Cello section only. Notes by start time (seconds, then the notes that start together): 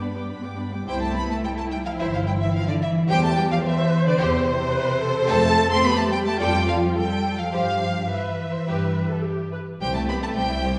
Already playing: B3
0.87 G3
1.01 A3
1.16 B3
1.30 A3
1.44 G3
1.57 A3
1.71 G3
1.85 F3
1.99 E3
2.13 F3
2.26 G3
2.40 E3
2.54 F3
2.68 D3
2.82 E3
3.09 G3
3.23 A3
3.37 G3
3.51 F3
3.64 E3
4.06 D3
4.20 C3
5.29 A3
5.70 C4
5.84 B3
5.98 A3
6.12 G3
6.26 A3
6.40 G3
6.68 F3
6.96 G3
7.38 F3
7.53 F3
8.10 E3
9.81 G3
9.95 A3
10.08 B3
10.23 A3
10.37 G3